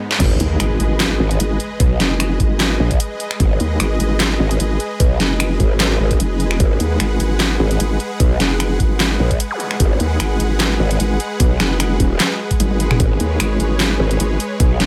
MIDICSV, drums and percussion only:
0, 0, Header, 1, 2, 480
1, 0, Start_track
1, 0, Key_signature, 5, "minor"
1, 0, Tempo, 400000
1, 240, Time_signature, 4, 2, 24, 8
1, 17833, End_track
2, 0, Start_track
2, 0, Title_t, "Drums"
2, 129, Note_on_c, 9, 38, 80
2, 239, Note_on_c, 9, 42, 82
2, 239, Note_on_c, 9, 49, 101
2, 240, Note_on_c, 9, 36, 116
2, 249, Note_off_c, 9, 38, 0
2, 359, Note_off_c, 9, 42, 0
2, 359, Note_off_c, 9, 49, 0
2, 360, Note_off_c, 9, 36, 0
2, 480, Note_on_c, 9, 42, 55
2, 600, Note_off_c, 9, 42, 0
2, 720, Note_on_c, 9, 26, 76
2, 720, Note_on_c, 9, 42, 84
2, 840, Note_off_c, 9, 26, 0
2, 840, Note_off_c, 9, 42, 0
2, 960, Note_on_c, 9, 42, 54
2, 1080, Note_off_c, 9, 42, 0
2, 1200, Note_on_c, 9, 38, 121
2, 1200, Note_on_c, 9, 39, 94
2, 1200, Note_on_c, 9, 42, 81
2, 1320, Note_off_c, 9, 38, 0
2, 1320, Note_off_c, 9, 39, 0
2, 1320, Note_off_c, 9, 42, 0
2, 1569, Note_on_c, 9, 42, 55
2, 1679, Note_off_c, 9, 42, 0
2, 1679, Note_on_c, 9, 42, 83
2, 1799, Note_off_c, 9, 42, 0
2, 1919, Note_on_c, 9, 42, 56
2, 2039, Note_off_c, 9, 42, 0
2, 2159, Note_on_c, 9, 36, 121
2, 2160, Note_on_c, 9, 42, 81
2, 2279, Note_off_c, 9, 36, 0
2, 2280, Note_off_c, 9, 42, 0
2, 2400, Note_on_c, 9, 38, 64
2, 2400, Note_on_c, 9, 42, 53
2, 2520, Note_off_c, 9, 38, 0
2, 2520, Note_off_c, 9, 42, 0
2, 2640, Note_on_c, 9, 26, 78
2, 2640, Note_on_c, 9, 42, 82
2, 2760, Note_off_c, 9, 26, 0
2, 2760, Note_off_c, 9, 42, 0
2, 2879, Note_on_c, 9, 36, 62
2, 2880, Note_on_c, 9, 42, 54
2, 2999, Note_off_c, 9, 36, 0
2, 3000, Note_off_c, 9, 42, 0
2, 3120, Note_on_c, 9, 38, 125
2, 3120, Note_on_c, 9, 39, 93
2, 3120, Note_on_c, 9, 42, 81
2, 3240, Note_off_c, 9, 38, 0
2, 3240, Note_off_c, 9, 39, 0
2, 3240, Note_off_c, 9, 42, 0
2, 3489, Note_on_c, 9, 36, 65
2, 3489, Note_on_c, 9, 42, 53
2, 3600, Note_off_c, 9, 42, 0
2, 3600, Note_on_c, 9, 42, 79
2, 3609, Note_off_c, 9, 36, 0
2, 3720, Note_off_c, 9, 42, 0
2, 3840, Note_on_c, 9, 42, 55
2, 3960, Note_off_c, 9, 42, 0
2, 3969, Note_on_c, 9, 26, 60
2, 4079, Note_on_c, 9, 36, 122
2, 4080, Note_on_c, 9, 42, 78
2, 4089, Note_off_c, 9, 26, 0
2, 4199, Note_off_c, 9, 36, 0
2, 4200, Note_off_c, 9, 42, 0
2, 4320, Note_on_c, 9, 42, 50
2, 4440, Note_off_c, 9, 42, 0
2, 4560, Note_on_c, 9, 26, 79
2, 4560, Note_on_c, 9, 42, 79
2, 4680, Note_off_c, 9, 26, 0
2, 4680, Note_off_c, 9, 42, 0
2, 4800, Note_on_c, 9, 42, 52
2, 4920, Note_off_c, 9, 42, 0
2, 5040, Note_on_c, 9, 38, 123
2, 5040, Note_on_c, 9, 39, 94
2, 5040, Note_on_c, 9, 42, 80
2, 5160, Note_off_c, 9, 38, 0
2, 5160, Note_off_c, 9, 39, 0
2, 5160, Note_off_c, 9, 42, 0
2, 5409, Note_on_c, 9, 42, 50
2, 5520, Note_off_c, 9, 42, 0
2, 5520, Note_on_c, 9, 42, 79
2, 5640, Note_off_c, 9, 42, 0
2, 5760, Note_on_c, 9, 42, 51
2, 5880, Note_off_c, 9, 42, 0
2, 5999, Note_on_c, 9, 36, 125
2, 5999, Note_on_c, 9, 42, 74
2, 6119, Note_off_c, 9, 36, 0
2, 6119, Note_off_c, 9, 42, 0
2, 6240, Note_on_c, 9, 38, 63
2, 6240, Note_on_c, 9, 42, 50
2, 6360, Note_off_c, 9, 38, 0
2, 6360, Note_off_c, 9, 42, 0
2, 6480, Note_on_c, 9, 26, 80
2, 6480, Note_on_c, 9, 42, 76
2, 6600, Note_off_c, 9, 26, 0
2, 6600, Note_off_c, 9, 42, 0
2, 6719, Note_on_c, 9, 36, 62
2, 6720, Note_on_c, 9, 42, 50
2, 6839, Note_off_c, 9, 36, 0
2, 6840, Note_off_c, 9, 42, 0
2, 6960, Note_on_c, 9, 38, 126
2, 6960, Note_on_c, 9, 39, 88
2, 6960, Note_on_c, 9, 42, 75
2, 7080, Note_off_c, 9, 38, 0
2, 7080, Note_off_c, 9, 39, 0
2, 7080, Note_off_c, 9, 42, 0
2, 7329, Note_on_c, 9, 36, 66
2, 7329, Note_on_c, 9, 42, 49
2, 7440, Note_off_c, 9, 42, 0
2, 7440, Note_on_c, 9, 42, 76
2, 7449, Note_off_c, 9, 36, 0
2, 7560, Note_off_c, 9, 42, 0
2, 7680, Note_on_c, 9, 42, 51
2, 7800, Note_off_c, 9, 42, 0
2, 7809, Note_on_c, 9, 26, 62
2, 7919, Note_on_c, 9, 36, 121
2, 7920, Note_on_c, 9, 42, 75
2, 7929, Note_off_c, 9, 26, 0
2, 8039, Note_off_c, 9, 36, 0
2, 8040, Note_off_c, 9, 42, 0
2, 8160, Note_on_c, 9, 42, 50
2, 8280, Note_off_c, 9, 42, 0
2, 8400, Note_on_c, 9, 26, 85
2, 8400, Note_on_c, 9, 42, 78
2, 8520, Note_off_c, 9, 26, 0
2, 8520, Note_off_c, 9, 42, 0
2, 8640, Note_on_c, 9, 42, 51
2, 8760, Note_off_c, 9, 42, 0
2, 8880, Note_on_c, 9, 38, 122
2, 8880, Note_on_c, 9, 39, 87
2, 8880, Note_on_c, 9, 42, 78
2, 9000, Note_off_c, 9, 38, 0
2, 9000, Note_off_c, 9, 39, 0
2, 9000, Note_off_c, 9, 42, 0
2, 9249, Note_on_c, 9, 42, 51
2, 9360, Note_off_c, 9, 42, 0
2, 9360, Note_on_c, 9, 42, 77
2, 9480, Note_off_c, 9, 42, 0
2, 9600, Note_on_c, 9, 42, 52
2, 9720, Note_off_c, 9, 42, 0
2, 9840, Note_on_c, 9, 36, 115
2, 9840, Note_on_c, 9, 42, 78
2, 9960, Note_off_c, 9, 36, 0
2, 9960, Note_off_c, 9, 42, 0
2, 10080, Note_on_c, 9, 38, 60
2, 10080, Note_on_c, 9, 42, 52
2, 10200, Note_off_c, 9, 38, 0
2, 10200, Note_off_c, 9, 42, 0
2, 10320, Note_on_c, 9, 26, 83
2, 10320, Note_on_c, 9, 42, 80
2, 10440, Note_off_c, 9, 26, 0
2, 10440, Note_off_c, 9, 42, 0
2, 10560, Note_on_c, 9, 36, 58
2, 10560, Note_on_c, 9, 42, 53
2, 10680, Note_off_c, 9, 36, 0
2, 10680, Note_off_c, 9, 42, 0
2, 10800, Note_on_c, 9, 38, 118
2, 10800, Note_on_c, 9, 39, 85
2, 10800, Note_on_c, 9, 42, 81
2, 10920, Note_off_c, 9, 38, 0
2, 10920, Note_off_c, 9, 39, 0
2, 10920, Note_off_c, 9, 42, 0
2, 11169, Note_on_c, 9, 36, 60
2, 11170, Note_on_c, 9, 42, 53
2, 11280, Note_off_c, 9, 42, 0
2, 11280, Note_on_c, 9, 42, 78
2, 11289, Note_off_c, 9, 36, 0
2, 11400, Note_off_c, 9, 42, 0
2, 11520, Note_on_c, 9, 42, 52
2, 11640, Note_off_c, 9, 42, 0
2, 11649, Note_on_c, 9, 26, 64
2, 11760, Note_on_c, 9, 36, 113
2, 11760, Note_on_c, 9, 42, 82
2, 11769, Note_off_c, 9, 26, 0
2, 11880, Note_off_c, 9, 36, 0
2, 11880, Note_off_c, 9, 42, 0
2, 11999, Note_on_c, 9, 42, 54
2, 12119, Note_off_c, 9, 42, 0
2, 12239, Note_on_c, 9, 26, 85
2, 12239, Note_on_c, 9, 42, 85
2, 12359, Note_off_c, 9, 26, 0
2, 12359, Note_off_c, 9, 42, 0
2, 12479, Note_on_c, 9, 42, 55
2, 12599, Note_off_c, 9, 42, 0
2, 12719, Note_on_c, 9, 38, 114
2, 12719, Note_on_c, 9, 39, 87
2, 12719, Note_on_c, 9, 42, 82
2, 12839, Note_off_c, 9, 38, 0
2, 12839, Note_off_c, 9, 39, 0
2, 12839, Note_off_c, 9, 42, 0
2, 13089, Note_on_c, 9, 42, 55
2, 13199, Note_off_c, 9, 42, 0
2, 13199, Note_on_c, 9, 42, 81
2, 13319, Note_off_c, 9, 42, 0
2, 13439, Note_on_c, 9, 42, 57
2, 13559, Note_off_c, 9, 42, 0
2, 13679, Note_on_c, 9, 36, 114
2, 13679, Note_on_c, 9, 42, 83
2, 13799, Note_off_c, 9, 36, 0
2, 13799, Note_off_c, 9, 42, 0
2, 13919, Note_on_c, 9, 26, 60
2, 13919, Note_on_c, 9, 38, 60
2, 13919, Note_on_c, 9, 42, 55
2, 14039, Note_off_c, 9, 26, 0
2, 14039, Note_off_c, 9, 38, 0
2, 14039, Note_off_c, 9, 42, 0
2, 14159, Note_on_c, 9, 26, 81
2, 14159, Note_on_c, 9, 42, 83
2, 14279, Note_off_c, 9, 26, 0
2, 14279, Note_off_c, 9, 42, 0
2, 14399, Note_on_c, 9, 36, 59
2, 14400, Note_on_c, 9, 42, 57
2, 14519, Note_off_c, 9, 36, 0
2, 14520, Note_off_c, 9, 42, 0
2, 14639, Note_on_c, 9, 38, 117
2, 14639, Note_on_c, 9, 39, 93
2, 14639, Note_on_c, 9, 42, 84
2, 14759, Note_off_c, 9, 38, 0
2, 14759, Note_off_c, 9, 39, 0
2, 14759, Note_off_c, 9, 42, 0
2, 15009, Note_on_c, 9, 36, 61
2, 15009, Note_on_c, 9, 42, 57
2, 15119, Note_off_c, 9, 42, 0
2, 15119, Note_on_c, 9, 42, 81
2, 15119, Note_on_c, 9, 48, 62
2, 15129, Note_off_c, 9, 36, 0
2, 15239, Note_off_c, 9, 42, 0
2, 15239, Note_off_c, 9, 48, 0
2, 15249, Note_on_c, 9, 48, 61
2, 15360, Note_on_c, 9, 42, 57
2, 15369, Note_off_c, 9, 48, 0
2, 15480, Note_off_c, 9, 42, 0
2, 15489, Note_on_c, 9, 26, 61
2, 15489, Note_on_c, 9, 45, 85
2, 15599, Note_on_c, 9, 36, 123
2, 15599, Note_on_c, 9, 42, 81
2, 15609, Note_off_c, 9, 26, 0
2, 15609, Note_off_c, 9, 45, 0
2, 15719, Note_off_c, 9, 36, 0
2, 15719, Note_off_c, 9, 42, 0
2, 15839, Note_on_c, 9, 42, 56
2, 15959, Note_off_c, 9, 42, 0
2, 16079, Note_on_c, 9, 26, 77
2, 16079, Note_on_c, 9, 42, 85
2, 16199, Note_off_c, 9, 26, 0
2, 16199, Note_off_c, 9, 42, 0
2, 16319, Note_on_c, 9, 42, 56
2, 16439, Note_off_c, 9, 42, 0
2, 16560, Note_on_c, 9, 38, 119
2, 16560, Note_on_c, 9, 39, 92
2, 16560, Note_on_c, 9, 42, 82
2, 16680, Note_off_c, 9, 38, 0
2, 16680, Note_off_c, 9, 39, 0
2, 16680, Note_off_c, 9, 42, 0
2, 16929, Note_on_c, 9, 42, 56
2, 17039, Note_off_c, 9, 42, 0
2, 17039, Note_on_c, 9, 42, 82
2, 17159, Note_off_c, 9, 42, 0
2, 17280, Note_on_c, 9, 42, 57
2, 17400, Note_off_c, 9, 42, 0
2, 17519, Note_on_c, 9, 36, 125
2, 17520, Note_on_c, 9, 42, 81
2, 17639, Note_off_c, 9, 36, 0
2, 17640, Note_off_c, 9, 42, 0
2, 17760, Note_on_c, 9, 38, 64
2, 17760, Note_on_c, 9, 42, 54
2, 17833, Note_off_c, 9, 38, 0
2, 17833, Note_off_c, 9, 42, 0
2, 17833, End_track
0, 0, End_of_file